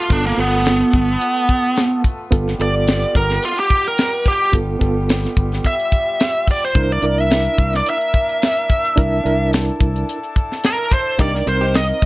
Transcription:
0.00 2.28 A3 medium
0.00 6.71 B3 medium
0.00 0.11 F4 medium
0.00 6.71 F4 medium
0.00 2.28 A4 medium
0.10 0.32 G1 loud
0.10 0.33 B3 medium
0.10 0.25 D4 medium
0.10 0.34 F4 medium
0.10 0.34 A4 medium
0.10 kick loud
0.10 closed hi-hat medium
0.26 0.38 A#3 medium
0.37 0.82 G1 medium
0.37 1.30 B3 medium
0.37 2.01 B3 medium
0.37 1.30 F4 medium
0.37 1.30 A4 medium
0.37 closed hi-hat medium
0.66 snare loud
0.66 closed hi-hat medium
0.80 closed hi-hat soft
0.93 1.16 G1 medium
0.93 kick medium
0.93 closed hi-hat medium
1.08 closed hi-hat soft
1.21 closed hi-hat medium
1.36 closed hi-hat soft
1.49 kick medium
1.49 closed hi-hat medium
1.77 snare loud
1.77 closed hi-hat medium
2.04 kick medium
2.04 closed hi-hat medium
2.31 2.54 G1 loud
2.31 6.71 G3 medium
2.31 2.54 B3 medium
2.31 2.55 F4 medium
2.31 6.71 G4 medium
2.31 2.55 A4 medium
2.31 kick loud
2.31 closed hi-hat medium
2.48 snare soft
2.59 3.04 G1 medium
2.59 3.51 B3 medium
2.59 3.52 F4 medium
2.59 3.52 A4 medium
2.59 3.14 D5 medium
2.59 closed hi-hat medium
2.88 snare loud
2.88 closed hi-hat medium
3.02 closed hi-hat soft
3.15 3.37 G1 medium
3.15 3.42 A#4 medium
3.15 kick medium
3.15 closed hi-hat medium
3.29 snare soft
3.29 closed hi-hat soft
3.43 3.58 F4 medium
3.43 closed hi-hat medium
3.57 3.85 G4 medium
3.57 closed hi-hat soft
3.70 kick medium
3.70 closed hi-hat soft
3.85 4.26 A#4 medium
3.85 closed hi-hat soft
3.98 snare loud
3.98 closed hi-hat medium
4.13 closed hi-hat soft
4.25 4.54 G4 loud
4.25 kick medium
4.25 closed hi-hat medium
4.40 closed hi-hat soft
4.52 4.75 G1 medium
4.52 4.76 B3 medium
4.52 4.76 F4 medium
4.52 4.77 A4 medium
4.52 kick loud
4.52 closed hi-hat medium
4.79 5.25 G1 medium
4.79 5.73 B3 medium
4.79 5.73 F4 medium
4.79 5.74 A4 medium
4.79 kick medium
4.79 closed hi-hat medium
5.09 snare loud
5.09 closed hi-hat medium
5.24 snare soft
5.24 closed hi-hat soft
5.37 5.59 G1 medium
5.37 kick medium
5.37 closed hi-hat medium
5.52 snare soft
5.52 closed hi-hat soft
5.65 6.46 E5 medium
5.65 kick medium
5.65 closed hi-hat medium
5.80 closed hi-hat soft
5.92 kick medium
5.92 closed hi-hat medium
6.20 snare loud
6.20 closed hi-hat medium
6.47 6.63 D5 medium
6.47 kick medium
6.47 open hi-hat medium
6.65 6.90 C5 medium
6.75 6.97 C2 loud
6.75 8.95 A#3 medium
6.75 6.98 D4 medium
6.75 11.16 D4 medium
6.75 6.99 E4 medium
6.75 11.16 E4 medium
6.75 8.95 A#4 medium
6.75 6.99 A#4 medium
6.75 kick loud
6.75 closed hi-hat medium
6.92 7.21 D5 loud
7.02 7.47 C2 medium
7.02 7.95 D4 medium
7.02 7.95 E4 medium
7.02 7.96 A#4 medium
7.02 closed hi-hat medium
7.21 7.73 E5 medium
7.31 snare loud
7.31 closed hi-hat medium
7.45 closed hi-hat soft
7.58 7.80 C2 medium
7.58 kick medium
7.58 closed hi-hat medium
7.73 7.88 D5 medium
7.73 snare soft
7.73 closed hi-hat soft
7.86 9.50 E5 loud
7.86 closed hi-hat medium
8.01 closed hi-hat soft
8.14 kick medium
8.14 closed hi-hat medium
8.29 closed hi-hat soft
8.42 snare loud
8.42 closed hi-hat medium
8.57 closed hi-hat soft
8.70 kick medium
8.70 closed hi-hat medium
8.85 closed hi-hat soft
8.96 9.19 C2 medium
8.96 9.20 D4 medium
8.96 9.20 E4 medium
8.96 11.17 A4 medium
8.96 9.21 A#4 medium
8.96 11.17 A5 medium
8.96 kick loud
8.96 closed hi-hat medium
9.24 9.69 C2 medium
9.24 10.17 D4 medium
9.24 10.17 E4 medium
9.24 10.18 A#4 loud
9.24 closed hi-hat medium
9.53 snare loud
9.53 closed hi-hat medium
9.68 closed hi-hat soft
9.80 10.03 C2 medium
9.80 kick medium
9.80 closed hi-hat medium
9.96 closed hi-hat soft
10.09 closed hi-hat medium
10.23 closed hi-hat soft
10.36 kick medium
10.36 closed hi-hat medium
10.52 snare soft
10.64 10.92 A#4 loud
10.64 snare loud
10.64 closed hi-hat medium
10.91 11.19 C5 loud
10.91 kick medium
10.91 closed hi-hat medium
11.18 11.41 C2 loud
11.18 11.33 A#3 medium
11.18 12.05 A#3 medium
11.18 12.05 C4 medium
11.18 11.42 D4 medium
11.18 11.42 D#4 medium
11.18 11.34 D#4 medium
11.18 11.33 G4 medium
11.18 12.05 A#4 medium
11.18 11.43 A#4 medium
11.18 11.47 D5 medium
11.18 kick loud
11.18 closed hi-hat medium
11.34 muted clean electric guitar stroke soft
11.34 snare soft
11.46 11.91 C2 medium
11.46 12.05 C4 medium
11.46 12.05 D#4 medium
11.46 12.05 A#4 medium
11.46 11.75 C5 medium
11.46 muted clean electric guitar stroke soft
11.46 closed hi-hat medium
11.61 11.74 D#4 soft
11.61 11.74 G4 medium
11.74 12.05 D#5 medium
11.74 muted clean electric guitar stroke soft
11.74 snare loud
11.74 closed hi-hat medium
11.89 closed hi-hat soft
12.02 12.05 C2 medium
12.02 kick medium
12.02 closed hi-hat medium

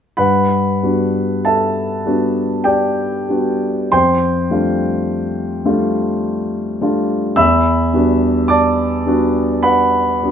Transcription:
0.17 0.81 G2 soft
0.17 1.42 B4 medium
0.17 1.42 F#5 soft
0.17 1.45 B5 medium
0.83 2.03 G3 soft
0.83 2.03 B3 soft
0.83 2.03 D4 soft
0.83 2.04 F#4 soft
1.45 2.63 A4 soft
1.45 2.62 E5 soft
1.45 2.66 A5 medium
2.06 3.25 G3 soft
2.06 3.26 B3 soft
2.06 3.26 D4 soft
2.06 3.26 F#4 soft
2.64 3.88 G4 medium
2.64 3.89 D5 soft
2.64 3.91 G5 medium
3.29 3.89 G3 soft
3.29 3.90 B3 soft
3.29 3.89 D4 soft
3.29 3.90 F#4 soft
3.92 4.50 F2 soft
3.92 6.78 C5 medium
3.92 6.78 G5 medium
3.92 6.81 C6 medium
4.50 5.62 G3 soft
4.50 5.62 A3 soft
4.50 5.62 D4 soft
4.50 5.62 F4 soft
5.66 6.78 G3 soft
5.66 6.78 A3 soft
5.66 6.78 D4 soft
5.66 6.78 F4 soft
6.81 7.34 G3 soft
6.81 7.34 A3 soft
6.81 7.34 D4 soft
6.81 7.35 F4 soft
7.36 7.92 E2 medium
7.36 8.46 E5 medium
7.36 8.46 B5 medium
7.36 8.50 E6 medium
7.93 9.03 G3 soft
7.93 9.03 B3 soft
7.93 9.04 D4 soft
7.93 9.04 F#4 soft
8.48 9.61 D5 medium
8.48 9.61 A5 medium
8.48 9.64 D6 medium
9.06 10.19 G3 soft
9.06 10.19 B3 soft
9.06 10.19 D4 soft
9.06 10.20 F#4 soft
9.63 10.31 B4 medium
9.63 10.31 F#5 medium
9.63 10.31 B5 medium
10.22 10.31 G3 soft
10.22 10.31 B3 soft
10.22 10.31 D4 soft
10.22 10.31 F#4 soft

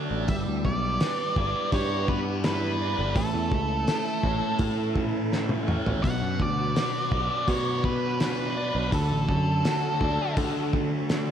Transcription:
0.00 0.23 F#3 medium
0.00 0.25 A3 medium
0.00 0.29 A3 medium
0.00 0.29 D4 medium
0.00 3.12 D4 medium
0.00 0.25 F#4 soft
0.00 0.29 F#4 medium
0.00 0.25 A4 medium
0.00 0.29 D5 medium
0.11 0.27 A1 medium
0.28 0.45 G1 medium
0.28 3.14 G3 medium
0.28 2.09 G3 medium
0.28 3.14 B3 medium
0.28 3.13 E4 medium
0.28 3.13 G4 medium
0.28 0.38 E5 loud
0.28 kick loud
0.28 open hi-hat soft
0.47 0.63 D2 medium
0.65 0.98 B1 medium
0.65 1.69 D5 medium
0.65 kick medium
1.00 1.72 B4 medium
1.00 snare loud
1.00 open hi-hat soft
1.36 1.53 G1 medium
1.36 2.80 D5 medium
1.36 kick medium
1.72 2.94 G2 medium
1.72 3.16 B4 medium
1.72 2.07 C#5 medium
1.72 kick medium
1.72 open hi-hat soft
2.08 3.17 B3 medium
2.08 2.19 B4 medium
2.08 kick medium
2.44 3.17 E4 medium
2.44 3.16 B4 medium
2.44 snare loud
2.44 open hi-hat soft
2.82 3.17 D5 medium
2.99 3.15 G1 medium
3.14 3.33 A1 medium
3.14 6.01 E3 medium
3.14 6.01 A3 soft
3.14 4.97 A3 medium
3.14 6.01 C#4 medium
3.14 6.00 E4 soft
3.14 6.01 A4 medium
3.14 4.56 A4 medium
3.14 kick medium
3.14 open hi-hat soft
3.34 3.51 E2 medium
3.52 3.85 C#2 medium
3.52 kick medium
3.88 4.59 A4 medium
3.88 snare loud
3.88 open hi-hat soft
4.23 4.40 A1 medium
4.23 5.66 C#5 medium
4.23 kick medium
4.59 5.82 A2 medium
4.59 6.04 A4 medium
4.59 kick medium
4.59 open hi-hat soft
4.95 6.04 C#4 medium
4.95 kick medium
5.31 6.04 E4 medium
5.31 snare soft
5.49 high tom medium
5.67 6.04 C#5 medium
5.67 mid tom medium
5.86 6.03 A1 medium
5.86 floor tom medium
6.03 6.21 B1 medium
6.03 7.84 B2 medium
6.03 11.31 D4 soft
6.03 11.31 F#4 soft
6.03 6.41 F#5 loud
6.03 kick medium
6.03 open hi-hat soft
6.07 11.31 F#3 medium
6.07 8.91 B3 soft
6.07 8.91 B4 medium
6.22 6.38 F#2 medium
6.40 6.73 D2 medium
6.40 7.49 D5 medium
6.40 kick medium
6.75 7.46 F#4 medium
6.75 snare loud
6.75 open hi-hat soft
7.11 7.28 B1 medium
7.11 8.56 D5 medium
7.11 kick medium
7.47 8.70 B2 medium
7.47 8.92 F#4 medium
7.47 7.83 C#5 medium
7.47 kick medium
7.47 open hi-hat soft
7.84 8.93 B3 medium
7.84 8.18 B4 medium
7.84 kick medium
8.20 11.11 D4 medium
8.20 8.89 B4 medium
8.20 snare loud
8.20 open hi-hat soft
8.57 10.03 D5 medium
8.75 8.91 B1 medium
8.92 9.09 D2 medium
8.92 10.73 D3 medium
8.92 11.31 A3 medium
8.92 11.31 A4 medium
8.92 10.34 A4 medium
8.92 kick medium
8.92 open hi-hat soft
9.10 9.27 A1 medium
9.29 9.61 F#2 medium
9.29 kick medium
9.65 10.37 F#4 medium
9.65 snare loud
9.65 open hi-hat soft
10.01 10.17 D2 medium
10.01 11.31 D5 medium
10.01 kick medium
10.37 11.31 D3 medium
10.37 11.31 F#4 medium
10.37 kick loud
10.37 open hi-hat soft
10.73 11.31 A3 medium
10.73 kick medium
11.09 11.31 D4 medium
11.09 snare loud
11.09 open hi-hat soft

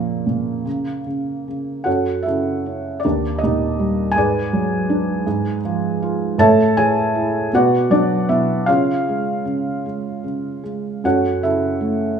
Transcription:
0.00 0.25 A#2 medium
0.00 0.64 C#3 soft
0.00 0.68 F3 soft
0.00 1.01 A#3 medium
0.26 0.65 A#2 soft
0.65 1.05 C#3 soft
1.06 1.46 C#3 soft
1.48 1.86 C#3 soft
1.84 3.00 F#2 soft
1.84 2.23 F#4 soft
1.84 2.23 A4 medium
1.84 2.24 C#5 soft
1.84 2.26 F#5 medium
2.23 3.00 E4 soft
2.23 3.00 A4 soft
2.23 3.05 E5 medium
2.28 3.02 C#3 soft
2.66 3.03 C#4 soft
3.00 3.37 D5 medium
3.04 4.13 D#2 soft
3.04 3.40 D4 soft
3.04 3.40 G4 soft
3.04 3.40 A#4 soft
3.38 4.16 D#5 medium
3.43 4.14 A#2 soft
3.43 4.13 D#4 medium
3.43 4.12 G4 soft
3.79 4.15 G3 soft
4.12 5.56 G#5 medium
4.16 5.22 G#2 medium
4.16 5.59 G#4 medium
4.16 5.60 B4 medium
4.16 5.60 D5 medium
4.53 5.24 F#3 soft
4.90 5.25 D4 soft
5.26 6.35 G#2 medium
5.65 6.37 F3 soft
6.02 6.38 F4 medium
6.38 7.49 A2 medium
6.38 6.74 A4 medium
6.38 6.74 C#5 medium
6.38 6.74 E5 medium
6.38 6.77 A5 loud
6.77 7.50 E3 soft
6.77 7.49 G#4 medium
6.77 7.49 C#5 medium
6.77 7.49 G#5 medium
7.15 7.51 E4 medium
7.53 8.28 B2 medium
7.53 7.89 F#4 medium
7.53 7.89 B4 medium
7.53 7.89 D5 medium
7.53 7.93 F#5 medium
7.90 8.65 F#3 soft
7.90 8.27 D4 medium
7.90 8.30 D5 medium
8.29 8.67 B2 soft
8.29 8.65 E4 soft
8.29 8.69 E5 medium
8.66 9.44 C#3 medium
8.66 10.61 F4 medium
8.66 10.61 G#4 medium
8.66 10.61 C#5 medium
8.66 10.60 F5 medium
9.09 9.84 G#3 soft
9.45 10.22 C#3 soft
9.86 10.62 G#3 soft
10.24 11.01 C#3 soft
10.64 11.03 G#3 soft
11.04 12.18 F#2 soft
11.04 11.41 F#4 medium
11.04 11.41 A4 medium
11.04 11.41 C#5 medium
11.04 11.45 F#5 medium
11.43 12.19 C#3 soft
11.43 12.18 E4 soft
11.43 12.18 A4 soft
11.43 12.20 E5 medium
11.80 12.19 A3 soft

